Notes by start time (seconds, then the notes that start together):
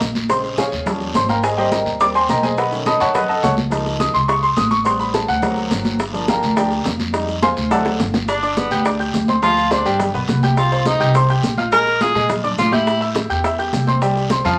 0.01 A#1, high bongo, low bongo, high conga, short guiro, maracas
0.15 high conga, short guiro, maracas
0.29 C#3 G#3 C4 C5 C6, high bongo, high conga, long guiro, maracas
0.44 high bongo, high conga, maracas
0.58 G#4 C#5 F5 G#5, high bongo, high conga, short guiro, maracas
0.72 D#2, high bongo, high conga, short guiro, maracas
0.86 F3 G3 C#4, high bongo, high conga, low conga, long guiro, maracas
1.00 high bongo, high conga, maracas
1.14 G#1 C5 C6, high bongo, low bongo, high conga, short guiro, maracas
1.29 A#4 F5 G5 A#5, high conga, short guiro, maracas
1.43 G#4 C5 D#5 G#5, high bongo, high conga, long guiro, maracas
1.57 G3 A#3 C4 G4 C5 D#5 G5, high bongo, high conga, maracas
1.71 A#4 D#5 G5 A#5, high bongo, high conga, short guiro, maracas
1.86 D#2, high bongo, short guiro, maracas
2.00 G3 A#3 C4 D5 D6, high bongo, high conga, long guiro, maracas
2.15 C5 G5 G#5 C6, high bongo, high conga, maracas
2.29 B1 A#4 D#5 G5 A#5, high bongo, low bongo, high conga, short guiro, maracas
2.43 G#4 C5 D#5 G#5, high conga, short guiro, maracas
2.58 B4 D#5 F#5 B5, high bongo, high conga, long guiro, maracas
2.72 D#3 A3 C#4, high bongo, high conga, maracas
2.86 D#5 A5 B5 D#6, high bongo, high conga, short guiro, maracas
3.00 F#2 C#5 F#5 A5 C#6, high bongo, high conga, short guiro, maracas
3.14 B4 D#5 F#5 B5, high bongo, high conga, low conga, long guiro, maracas
3.29 A4 D#5 F#5 A5, high bongo, high conga, maracas
3.43 C#2 C#5 F#5 A5 C#6, high bongo, low bongo, high conga, short guiro, maracas
3.57 high conga, short guiro, maracas
3.70 F3 A#3 D#4, high bongo, high conga, long guiro, maracas
3.86 high bongo, high conga, maracas
4.00 D#6, high bongo, high conga, short guiro, maracas
4.14 C#2 C6, high bongo, short guiro, maracas
4.28 C#6, high bongo, high conga, long guiro, maracas
4.43 C6, high bongo, high conga, maracas
4.57 A1 D#6, high bongo, low bongo, high conga, short guiro, maracas
4.71 C#6, high conga, short guiro, maracas
4.84 G3 B3 C4 C6, high bongo, high conga, long guiro, maracas
5.00 B5, high bongo, high conga, maracas
5.14 A5, high bongo, high conga, short guiro, maracas
5.28 D2 F#5, high bongo, high conga, short guiro, maracas
5.42 F#3 A#3 C4, high bongo, high conga, low conga, long guiro, maracas
5.57 high bongo, high conga, low conga, maracas
5.71 G1, high bongo, low bongo, high conga, short guiro, maracas
5.85 high conga, short guiro, maracas
5.99 high bongo, high conga, long guiro, maracas
6.13 F3 A#3 D4, high bongo, high conga, maracas
6.28 A#4 F5 G5 A#5, high bongo, high conga, short guiro, maracas
6.42 D2, high bongo, short guiro, maracas
6.56 F3 A#3 D4 G4 A#4 D5 G5, high bongo, high conga, long guiro, maracas
6.71 high bongo, high conga, maracas
6.85 F2, high bongo, low bongo, high conga, short guiro, maracas
7.00 high conga, short guiro, maracas
7.13 G3 G#3 D#4, high bongo, high conga, long guiro, maracas
7.28 high bongo, high conga, maracas
7.42 C5 F5 G#5 C6, high bongo, high conga, short guiro, maracas
7.57 D2, high bongo, high conga, short guiro, maracas
7.70 F#3 C4 E4 A4 D5 F#5 A5, high bongo, high conga, low conga, long guiro, maracas
7.86 high bongo, high conga, low conga, maracas
7.99 G1, low bongo, high conga, short guiro, maracas
8.14 low bongo, high conga, short guiro, maracas
8.28 D4, high bongo, high conga, long guiro, maracas
8.42 D4 D5 D6, high bongo, high conga, maracas
8.57 B3, high bongo, high conga, short guiro, maracas
8.71 D2 G4 G5 G6, high bongo, short guiro, maracas
8.85 D4 D5 D6, high bongo, high conga, long guiro, maracas
9.00 G4 G5 G6, high bongo, high conga, maracas
9.14 D2, high bongo, low bongo, high conga, short guiro, maracas
9.28 C4 C5 C6, high conga, short guiro, maracas
9.42 F3 F4 F5, high bongo, long guiro, maracas
9.57 high bongo, high conga, maracas
9.71 C4 D4 C5 C6, high bongo, high conga, short guiro, maracas
9.85 G1 G3 G4 G5, high bongo, high conga, short guiro, maracas
10.00 high bongo, high conga, low conga, long guiro, maracas
10.14 B1 B3 B4 B5, high bongo, high conga, low conga, maracas
10.28 C2, high bongo, low bongo, high conga, short guiro, maracas
10.43 G4 G5 G6, high conga, short guiro, maracas
10.57 F4, high bongo, high conga, long guiro, maracas
10.72 C4 C5 C6, high bongo, high conga, maracas
10.85 D#4, high bongo, high conga, short guiro, maracas
11.00 C2 G4 G5 G6, high bongo, short guiro, maracas
11.15 C4 C5 C6, high bongo, high conga, long guiro, maracas
11.29 G4 G5 G6, high bongo, high conga, maracas
11.43 A#1, high bongo, low bongo, high conga, short guiro, maracas
11.57 F4 F5 F6, high conga, short guiro, maracas
11.72 G#3 G#4 A#4 G#5, high bongo, high conga, long guiro, maracas
11.86 high bongo, high conga, maracas
12.01 F4 G#4 F5 F6, high bongo, high conga, short guiro, maracas
12.15 A#2 G#3 G#4 G#5, high bongo, high conga, short guiro, maracas
12.29 high bongo, high conga, low conga, long guiro, maracas
12.44 D4 D5 D6, high bongo, high conga, low conga, maracas
12.58 A2 F4, high bongo, low bongo, high conga, short guiro, maracas
12.72 E4 G4 G5 G6, high conga, short guiro, maracas
12.87 high bongo, high conga, long guiro, maracas
13.00 E4 E5 E6, high bongo, high conga, maracas
13.15 high bongo, high conga, short guiro, maracas
13.30 E2 G4 G5 G6, high bongo, short guiro, maracas
13.44 E4 E5 E6, high bongo, high conga, long guiro, maracas
13.59 G4 G5 G6, high bongo, high conga, maracas
13.73 C2, high bongo, low bongo, high conga, short guiro, maracas
13.87 C4 C5 C6, high conga, short guiro, maracas
14.01 G3 G4 G5, high bongo, high conga, long guiro, maracas
14.16 high bongo, high conga, maracas
14.30 C4 C5 C6, high bongo, high conga, short guiro, maracas
14.44 F2 F3 F4 F5, high bongo, high conga, short guiro, maracas